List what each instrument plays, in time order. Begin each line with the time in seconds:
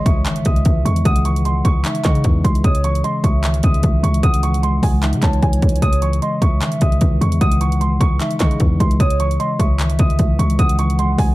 Already playing: tine electric piano C#3 E3 G#3, impact
0.06 808-style bass C#2, grand piano C#6, kick, closed hi-hat
0.25 tine electric piano D#3, clap, closed hi-hat
0.36 closed hi-hat
0.45 808-style bass C#2, tine electric piano C#3, grand piano D#6, kick, closed hi-hat
0.56 closed hi-hat
0.65 808-style bass C#2, tine electric piano E3, kick, closed hi-hat
0.85 808-style bass E2, tine electric piano G#3, grand piano C#6, closed hi-hat
0.96 closed hi-hat
1.05 808-style bass C#2, tine electric piano C#3, soft synth lead F#5, grand piano D#6, kick, closed hi-hat
1.16 closed hi-hat
1.25 tine electric piano E3, grand piano C#6, closed hi-hat
1.36 closed hi-hat
1.45 tine electric piano G#3, grand piano C6, closed hi-hat
1.65 808-style bass C#2, grand piano C#6, kick, closed hi-hat
1.84 tine electric piano D#4, soft synth lead E5, clap, closed hi-hat
1.95 closed hi-hat
2.04 tine electric piano C#3, 808-style bass C#3, soft synth lead D#5, grand piano C#6, kick, clap, closed hi-hat
2.15 closed hi-hat
2.24 808-style bass E2, tine electric piano E3, kick, closed hi-hat
2.44 808-style bass C#2, tine electric piano G#3, grand piano C6, kick, closed hi-hat
2.55 closed hi-hat
2.64 808-style bass C#2, tine electric piano C#3, soft synth lead C#5, grand piano D#6, kick, closed hi-hat
2.75 closed hi-hat
2.84 tine electric piano E3, grand piano C#6, closed hi-hat
2.95 closed hi-hat
3.04 tine electric piano G#3, soft synth lead D#5, grand piano C6, closed hi-hat
3.24 808-style bass C#2, soft synth lead E5, grand piano C#6, kick, closed hi-hat
3.44 tine electric piano D#3, clap, closed hi-hat
3.54 closed hi-hat
3.63 808-style bass C#2, tine electric piano C#3, grand piano D#6, kick, closed hi-hat
3.74 closed hi-hat
3.83 808-style bass C#2, tine electric piano E3, kick, closed hi-hat
4.03 808-style bass C#2, tine electric piano G#3, grand piano C#6, closed hi-hat
4.14 closed hi-hat
4.23 808-style bass C#2, tine electric piano C#3, soft synth lead F#5, grand piano D#6, kick, closed hi-hat
4.34 closed hi-hat
4.43 tine electric piano E3, grand piano C#6, closed hi-hat
4.54 closed hi-hat
4.63 tine electric piano G#3, grand piano C6, closed hi-hat
4.83 808-style bass C#2, grand piano G#5, kick, open hi-hat
5.03 tine electric piano D#4, soft synth lead E5, clap, closed hi-hat
5.13 808-style bass C#3, closed hi-hat
5.22 808-style bass C#2, tine electric piano C#3, soft synth lead C#5, grand piano A5, kick, clap, closed hi-hat
5.33 closed hi-hat
5.42 808-style bass C#2, tine electric piano E3, grand piano G#5, kick, closed hi-hat
5.53 closed hi-hat
5.62 808-style bass C#2, tine electric piano G#3, kick, closed hi-hat
5.69 closed hi-hat
5.76 closed hi-hat
5.82 808-style bass C#2, tine electric piano C#3, grand piano D#6, kick, closed hi-hat
5.93 closed hi-hat
6.02 tine electric piano E3, grand piano C#6, closed hi-hat
6.13 closed hi-hat
6.22 tine electric piano G#3, soft synth lead D#5, grand piano C6, closed hi-hat
6.42 808-style bass C#2, grand piano C#6, kick, closed hi-hat
6.61 tine electric piano D#3, clap, closed hi-hat
6.72 closed hi-hat
6.81 808-style bass C#2, tine electric piano C#3, grand piano D#6, kick, closed hi-hat
6.92 closed hi-hat
7.01 808-style bass C#2, tine electric piano E3, kick, closed hi-hat
7.21 808-style bass E2, tine electric piano G#3, grand piano C#6, closed hi-hat
7.32 closed hi-hat
7.41 808-style bass C#2, tine electric piano C#3, soft synth lead F#5, grand piano D#6, kick, closed hi-hat
7.52 closed hi-hat
7.61 tine electric piano E3, grand piano C#6, closed hi-hat
7.72 closed hi-hat
7.81 tine electric piano G#3, grand piano C6, closed hi-hat
8.01 808-style bass C#2, grand piano C#6, kick, closed hi-hat
8.20 tine electric piano D#4, soft synth lead E5, clap, closed hi-hat
8.31 closed hi-hat
8.40 tine electric piano C#3, 808-style bass C#3, soft synth lead D#5, grand piano C#6, kick, clap, closed hi-hat
8.51 closed hi-hat
8.60 808-style bass E2, tine electric piano E3, kick, closed hi-hat
8.80 808-style bass C#2, tine electric piano G#3, grand piano C6, kick, closed hi-hat
8.91 closed hi-hat
9.00 808-style bass C#2, tine electric piano C#3, soft synth lead C#5, grand piano D#6, kick, closed hi-hat
9.10 closed hi-hat
9.20 tine electric piano E3, grand piano C#6, closed hi-hat
9.31 closed hi-hat
9.40 tine electric piano G#3, soft synth lead D#5, grand piano C6, closed hi-hat
9.60 808-style bass C#2, soft synth lead E5, grand piano C#6, kick, closed hi-hat
9.79 tine electric piano D#3, clap, closed hi-hat
9.90 closed hi-hat
9.99 808-style bass C#2, tine electric piano C#3, grand piano D#6, kick, closed hi-hat
10.10 closed hi-hat
10.19 808-style bass C#2, tine electric piano E3, kick, closed hi-hat
10.39 808-style bass C#2, tine electric piano G#3, grand piano C#6, closed hi-hat
10.50 closed hi-hat
10.59 808-style bass C#2, tine electric piano C#3, soft synth lead F#5, grand piano D#6, kick, closed hi-hat
10.69 closed hi-hat
10.79 tine electric piano E3, grand piano C#6, closed hi-hat
10.90 closed hi-hat
10.99 tine electric piano G#3, grand piano C6, closed hi-hat
11.18 808-style bass C#2, grand piano G#5, kick, open hi-hat